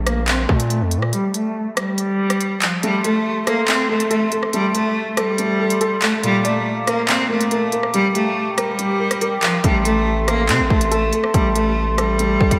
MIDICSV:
0, 0, Header, 1, 6, 480
1, 0, Start_track
1, 0, Tempo, 425532
1, 1274, Time_signature, 4, 2, 24, 8
1, 14202, End_track
2, 0, Start_track
2, 0, Title_t, "Glass harmonica"
2, 0, Program_c, 0, 92
2, 3191, Note_on_c, 0, 76, 65
2, 3192, Note_on_c, 0, 69, 69
2, 3192, Note_on_c, 0, 84, 77
2, 6994, Note_off_c, 0, 69, 0
2, 6994, Note_off_c, 0, 76, 0
2, 6995, Note_off_c, 0, 84, 0
2, 7032, Note_on_c, 0, 77, 64
2, 7032, Note_on_c, 0, 82, 71
2, 7032, Note_on_c, 0, 86, 80
2, 8934, Note_off_c, 0, 77, 0
2, 8934, Note_off_c, 0, 82, 0
2, 8953, Note_on_c, 0, 79, 63
2, 8954, Note_on_c, 0, 82, 73
2, 10834, Note_off_c, 0, 86, 0
2, 10855, Note_off_c, 0, 79, 0
2, 10855, Note_off_c, 0, 82, 0
2, 10874, Note_on_c, 0, 76, 66
2, 10874, Note_on_c, 0, 84, 78
2, 10875, Note_on_c, 0, 69, 72
2, 14202, Note_off_c, 0, 69, 0
2, 14202, Note_off_c, 0, 76, 0
2, 14202, Note_off_c, 0, 84, 0
2, 14202, End_track
3, 0, Start_track
3, 0, Title_t, "Felt piano"
3, 0, Program_c, 1, 0
3, 3196, Note_on_c, 1, 57, 95
3, 3394, Control_c, 1, 64, 127
3, 3432, Note_on_c, 1, 69, 72
3, 3896, Note_off_c, 1, 69, 0
3, 3913, Note_on_c, 1, 69, 92
3, 4139, Note_off_c, 1, 57, 0
3, 4156, Note_on_c, 1, 57, 67
3, 4373, Note_off_c, 1, 69, 0
3, 4390, Note_on_c, 1, 69, 84
3, 4613, Note_off_c, 1, 69, 0
3, 4630, Note_on_c, 1, 69, 98
3, 4859, Note_off_c, 1, 69, 0
3, 4876, Note_on_c, 1, 69, 77
3, 5101, Note_off_c, 1, 57, 0
3, 5118, Note_on_c, 1, 57, 88
3, 5338, Note_off_c, 1, 69, 0
3, 5355, Note_on_c, 1, 69, 75
3, 5816, Note_off_c, 1, 69, 0
3, 5833, Note_on_c, 1, 69, 91
3, 6060, Note_off_c, 1, 57, 0
3, 6077, Note_on_c, 1, 57, 78
3, 6293, Note_off_c, 1, 69, 0
3, 6310, Note_on_c, 1, 69, 78
3, 6537, Note_off_c, 1, 69, 0
3, 6553, Note_on_c, 1, 69, 101
3, 6775, Note_off_c, 1, 69, 0
3, 6792, Note_on_c, 1, 69, 73
3, 7029, Note_on_c, 1, 46, 89
3, 7033, Note_off_c, 1, 69, 0
3, 7035, Note_off_c, 1, 57, 0
3, 7050, Control_c, 1, 64, 0
3, 7261, Control_c, 1, 64, 127
3, 7272, Note_on_c, 1, 74, 88
3, 7755, Note_on_c, 1, 70, 89
3, 7993, Note_on_c, 1, 58, 75
3, 8218, Note_off_c, 1, 70, 0
3, 8232, Note_off_c, 1, 46, 0
3, 8235, Note_on_c, 1, 70, 75
3, 8459, Note_off_c, 1, 70, 0
3, 8473, Note_off_c, 1, 74, 0
3, 8476, Note_on_c, 1, 70, 99
3, 8700, Note_off_c, 1, 70, 0
3, 8717, Note_on_c, 1, 70, 85
3, 8954, Note_off_c, 1, 58, 0
3, 8956, Note_off_c, 1, 70, 0
3, 8957, Note_on_c, 1, 55, 90
3, 8970, Control_c, 1, 64, 0
3, 9148, Control_c, 1, 64, 127
3, 9198, Note_on_c, 1, 67, 77
3, 9674, Note_on_c, 1, 70, 86
3, 9901, Note_off_c, 1, 55, 0
3, 9918, Note_on_c, 1, 55, 74
3, 10132, Note_off_c, 1, 70, 0
3, 10149, Note_on_c, 1, 70, 72
3, 10377, Note_off_c, 1, 70, 0
3, 10394, Note_on_c, 1, 70, 98
3, 10396, Note_off_c, 1, 67, 0
3, 10616, Note_off_c, 1, 70, 0
3, 10633, Note_on_c, 1, 70, 80
3, 10873, Note_off_c, 1, 70, 0
3, 10876, Note_off_c, 1, 55, 0
3, 10877, Note_on_c, 1, 57, 94
3, 10886, Control_c, 1, 64, 0
3, 11101, Control_c, 1, 64, 127
3, 11112, Note_on_c, 1, 69, 74
3, 11576, Note_off_c, 1, 69, 0
3, 11593, Note_on_c, 1, 69, 87
3, 11818, Note_off_c, 1, 57, 0
3, 11835, Note_on_c, 1, 57, 70
3, 12053, Note_off_c, 1, 69, 0
3, 12070, Note_on_c, 1, 69, 84
3, 12294, Note_off_c, 1, 69, 0
3, 12310, Note_on_c, 1, 69, 98
3, 12539, Note_off_c, 1, 69, 0
3, 12556, Note_on_c, 1, 69, 75
3, 12781, Note_off_c, 1, 57, 0
3, 12798, Note_on_c, 1, 57, 88
3, 13018, Note_off_c, 1, 69, 0
3, 13035, Note_on_c, 1, 69, 74
3, 13496, Note_off_c, 1, 69, 0
3, 13513, Note_on_c, 1, 69, 93
3, 13739, Note_off_c, 1, 57, 0
3, 13756, Note_on_c, 1, 57, 77
3, 13973, Note_off_c, 1, 69, 0
3, 13990, Note_on_c, 1, 69, 81
3, 14202, Note_off_c, 1, 57, 0
3, 14202, Note_off_c, 1, 69, 0
3, 14202, End_track
4, 0, Start_track
4, 0, Title_t, "Cello"
4, 0, Program_c, 2, 42
4, 71, Note_on_c, 2, 58, 81
4, 289, Note_off_c, 2, 58, 0
4, 315, Note_on_c, 2, 60, 86
4, 531, Note_off_c, 2, 60, 0
4, 553, Note_on_c, 2, 57, 81
4, 770, Note_off_c, 2, 57, 0
4, 794, Note_on_c, 2, 57, 78
4, 1011, Note_off_c, 2, 57, 0
4, 1272, Note_on_c, 2, 55, 100
4, 1490, Note_off_c, 2, 55, 0
4, 1513, Note_on_c, 2, 57, 84
4, 1965, Note_off_c, 2, 57, 0
4, 1992, Note_on_c, 2, 55, 88
4, 2908, Note_off_c, 2, 55, 0
4, 2953, Note_on_c, 2, 53, 83
4, 3170, Note_off_c, 2, 53, 0
4, 3193, Note_on_c, 2, 55, 105
4, 3410, Note_off_c, 2, 55, 0
4, 3432, Note_on_c, 2, 57, 87
4, 3884, Note_off_c, 2, 57, 0
4, 3914, Note_on_c, 2, 58, 82
4, 4131, Note_off_c, 2, 58, 0
4, 4153, Note_on_c, 2, 60, 81
4, 4370, Note_off_c, 2, 60, 0
4, 4394, Note_on_c, 2, 57, 88
4, 4611, Note_off_c, 2, 57, 0
4, 4633, Note_on_c, 2, 57, 86
4, 4850, Note_off_c, 2, 57, 0
4, 5112, Note_on_c, 2, 55, 97
4, 5330, Note_off_c, 2, 55, 0
4, 5351, Note_on_c, 2, 57, 89
4, 5804, Note_off_c, 2, 57, 0
4, 5835, Note_on_c, 2, 55, 89
4, 6749, Note_off_c, 2, 55, 0
4, 6793, Note_on_c, 2, 57, 89
4, 7011, Note_off_c, 2, 57, 0
4, 7033, Note_on_c, 2, 55, 114
4, 7250, Note_off_c, 2, 55, 0
4, 7274, Note_on_c, 2, 57, 88
4, 7725, Note_off_c, 2, 57, 0
4, 7756, Note_on_c, 2, 58, 80
4, 7972, Note_off_c, 2, 58, 0
4, 7994, Note_on_c, 2, 60, 87
4, 8211, Note_off_c, 2, 60, 0
4, 8236, Note_on_c, 2, 57, 81
4, 8452, Note_off_c, 2, 57, 0
4, 8474, Note_on_c, 2, 57, 78
4, 8691, Note_off_c, 2, 57, 0
4, 8955, Note_on_c, 2, 55, 106
4, 9171, Note_off_c, 2, 55, 0
4, 9195, Note_on_c, 2, 57, 86
4, 9646, Note_off_c, 2, 57, 0
4, 9676, Note_on_c, 2, 55, 89
4, 10590, Note_off_c, 2, 55, 0
4, 10634, Note_on_c, 2, 53, 82
4, 10851, Note_off_c, 2, 53, 0
4, 10873, Note_on_c, 2, 55, 102
4, 11090, Note_off_c, 2, 55, 0
4, 11113, Note_on_c, 2, 57, 90
4, 11565, Note_off_c, 2, 57, 0
4, 11592, Note_on_c, 2, 58, 85
4, 11810, Note_off_c, 2, 58, 0
4, 11832, Note_on_c, 2, 60, 80
4, 12050, Note_off_c, 2, 60, 0
4, 12071, Note_on_c, 2, 57, 87
4, 12289, Note_off_c, 2, 57, 0
4, 12310, Note_on_c, 2, 57, 90
4, 12528, Note_off_c, 2, 57, 0
4, 12792, Note_on_c, 2, 55, 96
4, 13010, Note_off_c, 2, 55, 0
4, 13032, Note_on_c, 2, 57, 85
4, 13484, Note_off_c, 2, 57, 0
4, 13513, Note_on_c, 2, 55, 87
4, 14202, Note_off_c, 2, 55, 0
4, 14202, End_track
5, 0, Start_track
5, 0, Title_t, "808-style bass"
5, 0, Program_c, 3, 38
5, 0, Note_on_c, 3, 34, 107
5, 508, Note_off_c, 3, 34, 0
5, 553, Note_on_c, 3, 46, 105
5, 914, Note_on_c, 3, 41, 101
5, 931, Note_off_c, 3, 46, 0
5, 1093, Note_on_c, 3, 46, 99
5, 1110, Note_off_c, 3, 41, 0
5, 1265, Note_off_c, 3, 46, 0
5, 10874, Note_on_c, 3, 33, 104
5, 11833, Note_on_c, 3, 48, 102
5, 11850, Note_off_c, 3, 33, 0
5, 11953, Note_on_c, 3, 33, 101
5, 11970, Note_off_c, 3, 48, 0
5, 12067, Note_off_c, 3, 33, 0
5, 12074, Note_on_c, 3, 33, 100
5, 12535, Note_off_c, 3, 33, 0
5, 12793, Note_on_c, 3, 33, 107
5, 13949, Note_off_c, 3, 33, 0
5, 13993, Note_on_c, 3, 33, 101
5, 14109, Note_off_c, 3, 33, 0
5, 14113, Note_on_c, 3, 33, 101
5, 14202, Note_off_c, 3, 33, 0
5, 14202, End_track
6, 0, Start_track
6, 0, Title_t, "Drums"
6, 74, Note_on_c, 9, 37, 99
6, 74, Note_on_c, 9, 42, 88
6, 186, Note_off_c, 9, 37, 0
6, 187, Note_off_c, 9, 42, 0
6, 312, Note_on_c, 9, 39, 108
6, 312, Note_on_c, 9, 42, 78
6, 425, Note_off_c, 9, 39, 0
6, 425, Note_off_c, 9, 42, 0
6, 553, Note_on_c, 9, 36, 91
6, 666, Note_off_c, 9, 36, 0
6, 674, Note_on_c, 9, 42, 88
6, 787, Note_off_c, 9, 42, 0
6, 793, Note_on_c, 9, 42, 70
6, 905, Note_off_c, 9, 42, 0
6, 1031, Note_on_c, 9, 42, 77
6, 1143, Note_off_c, 9, 42, 0
6, 1155, Note_on_c, 9, 37, 67
6, 1268, Note_off_c, 9, 37, 0
6, 1274, Note_on_c, 9, 42, 88
6, 1386, Note_off_c, 9, 42, 0
6, 1514, Note_on_c, 9, 42, 81
6, 1627, Note_off_c, 9, 42, 0
6, 1995, Note_on_c, 9, 37, 100
6, 1996, Note_on_c, 9, 42, 86
6, 2108, Note_off_c, 9, 37, 0
6, 2109, Note_off_c, 9, 42, 0
6, 2233, Note_on_c, 9, 42, 81
6, 2346, Note_off_c, 9, 42, 0
6, 2595, Note_on_c, 9, 37, 90
6, 2595, Note_on_c, 9, 42, 88
6, 2708, Note_off_c, 9, 37, 0
6, 2708, Note_off_c, 9, 42, 0
6, 2713, Note_on_c, 9, 42, 78
6, 2826, Note_off_c, 9, 42, 0
6, 2951, Note_on_c, 9, 42, 70
6, 2954, Note_on_c, 9, 39, 121
6, 3064, Note_off_c, 9, 42, 0
6, 3067, Note_off_c, 9, 39, 0
6, 3194, Note_on_c, 9, 42, 86
6, 3307, Note_off_c, 9, 42, 0
6, 3434, Note_on_c, 9, 42, 81
6, 3547, Note_off_c, 9, 42, 0
6, 3914, Note_on_c, 9, 37, 99
6, 3915, Note_on_c, 9, 42, 86
6, 4027, Note_off_c, 9, 37, 0
6, 4028, Note_off_c, 9, 42, 0
6, 4152, Note_on_c, 9, 42, 80
6, 4153, Note_on_c, 9, 39, 107
6, 4265, Note_off_c, 9, 39, 0
6, 4265, Note_off_c, 9, 42, 0
6, 4514, Note_on_c, 9, 42, 87
6, 4626, Note_off_c, 9, 42, 0
6, 4632, Note_on_c, 9, 42, 71
6, 4745, Note_off_c, 9, 42, 0
6, 4870, Note_on_c, 9, 42, 73
6, 4983, Note_off_c, 9, 42, 0
6, 4994, Note_on_c, 9, 37, 71
6, 5107, Note_off_c, 9, 37, 0
6, 5113, Note_on_c, 9, 42, 86
6, 5226, Note_off_c, 9, 42, 0
6, 5354, Note_on_c, 9, 42, 82
6, 5466, Note_off_c, 9, 42, 0
6, 5834, Note_on_c, 9, 37, 98
6, 5835, Note_on_c, 9, 42, 85
6, 5947, Note_off_c, 9, 37, 0
6, 5948, Note_off_c, 9, 42, 0
6, 6072, Note_on_c, 9, 42, 79
6, 6185, Note_off_c, 9, 42, 0
6, 6433, Note_on_c, 9, 42, 89
6, 6546, Note_off_c, 9, 42, 0
6, 6553, Note_on_c, 9, 42, 77
6, 6665, Note_off_c, 9, 42, 0
6, 6790, Note_on_c, 9, 42, 71
6, 6793, Note_on_c, 9, 39, 124
6, 6903, Note_off_c, 9, 42, 0
6, 6906, Note_off_c, 9, 39, 0
6, 7033, Note_on_c, 9, 42, 88
6, 7146, Note_off_c, 9, 42, 0
6, 7274, Note_on_c, 9, 42, 80
6, 7386, Note_off_c, 9, 42, 0
6, 7754, Note_on_c, 9, 37, 99
6, 7754, Note_on_c, 9, 42, 84
6, 7866, Note_off_c, 9, 37, 0
6, 7867, Note_off_c, 9, 42, 0
6, 7991, Note_on_c, 9, 42, 81
6, 7992, Note_on_c, 9, 39, 110
6, 8104, Note_off_c, 9, 42, 0
6, 8105, Note_off_c, 9, 39, 0
6, 8354, Note_on_c, 9, 42, 85
6, 8467, Note_off_c, 9, 42, 0
6, 8473, Note_on_c, 9, 42, 74
6, 8586, Note_off_c, 9, 42, 0
6, 8711, Note_on_c, 9, 42, 76
6, 8824, Note_off_c, 9, 42, 0
6, 8835, Note_on_c, 9, 37, 69
6, 8948, Note_off_c, 9, 37, 0
6, 8954, Note_on_c, 9, 42, 86
6, 9066, Note_off_c, 9, 42, 0
6, 9194, Note_on_c, 9, 42, 82
6, 9307, Note_off_c, 9, 42, 0
6, 9675, Note_on_c, 9, 37, 100
6, 9675, Note_on_c, 9, 42, 84
6, 9788, Note_off_c, 9, 37, 0
6, 9788, Note_off_c, 9, 42, 0
6, 9913, Note_on_c, 9, 42, 80
6, 10026, Note_off_c, 9, 42, 0
6, 10274, Note_on_c, 9, 37, 92
6, 10275, Note_on_c, 9, 42, 91
6, 10387, Note_off_c, 9, 37, 0
6, 10387, Note_off_c, 9, 42, 0
6, 10393, Note_on_c, 9, 42, 78
6, 10506, Note_off_c, 9, 42, 0
6, 10631, Note_on_c, 9, 42, 71
6, 10634, Note_on_c, 9, 39, 127
6, 10744, Note_off_c, 9, 42, 0
6, 10747, Note_off_c, 9, 39, 0
6, 10873, Note_on_c, 9, 42, 83
6, 10874, Note_on_c, 9, 36, 108
6, 10986, Note_off_c, 9, 36, 0
6, 10986, Note_off_c, 9, 42, 0
6, 11114, Note_on_c, 9, 42, 83
6, 11227, Note_off_c, 9, 42, 0
6, 11594, Note_on_c, 9, 37, 97
6, 11595, Note_on_c, 9, 42, 85
6, 11707, Note_off_c, 9, 37, 0
6, 11708, Note_off_c, 9, 42, 0
6, 11832, Note_on_c, 9, 42, 82
6, 11833, Note_on_c, 9, 39, 112
6, 11945, Note_off_c, 9, 39, 0
6, 11945, Note_off_c, 9, 42, 0
6, 12074, Note_on_c, 9, 36, 94
6, 12186, Note_off_c, 9, 36, 0
6, 12194, Note_on_c, 9, 42, 88
6, 12307, Note_off_c, 9, 42, 0
6, 12313, Note_on_c, 9, 42, 72
6, 12426, Note_off_c, 9, 42, 0
6, 12550, Note_on_c, 9, 42, 75
6, 12663, Note_off_c, 9, 42, 0
6, 12675, Note_on_c, 9, 37, 68
6, 12787, Note_off_c, 9, 37, 0
6, 12794, Note_on_c, 9, 36, 109
6, 12794, Note_on_c, 9, 42, 86
6, 12906, Note_off_c, 9, 36, 0
6, 12906, Note_off_c, 9, 42, 0
6, 13035, Note_on_c, 9, 42, 82
6, 13147, Note_off_c, 9, 42, 0
6, 13515, Note_on_c, 9, 37, 99
6, 13515, Note_on_c, 9, 42, 83
6, 13627, Note_off_c, 9, 37, 0
6, 13628, Note_off_c, 9, 42, 0
6, 13752, Note_on_c, 9, 42, 78
6, 13865, Note_off_c, 9, 42, 0
6, 13994, Note_on_c, 9, 36, 94
6, 14107, Note_off_c, 9, 36, 0
6, 14113, Note_on_c, 9, 36, 93
6, 14114, Note_on_c, 9, 42, 89
6, 14202, Note_off_c, 9, 36, 0
6, 14202, Note_off_c, 9, 42, 0
6, 14202, End_track
0, 0, End_of_file